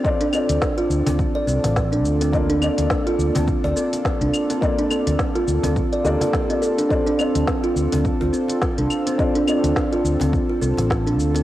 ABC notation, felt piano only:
X:1
M:4/4
L:1/16
Q:"Swing 16ths" 1/4=105
K:Dm
V:1 name="Felt piano"
[CDFAd] z [CDFAd]12- [CDFAd]2 | [B,DFAd] z [B,DFAd]12- [B,DFAd]2 | [B,DFAd] z8 z [B,DFAd]3 [B,DFAd]3 | [CDFAd] z [CDFAd]12- [CDFAd]2 |
[CDFAd] z [CDFAd]12- [CDFAd]2 |]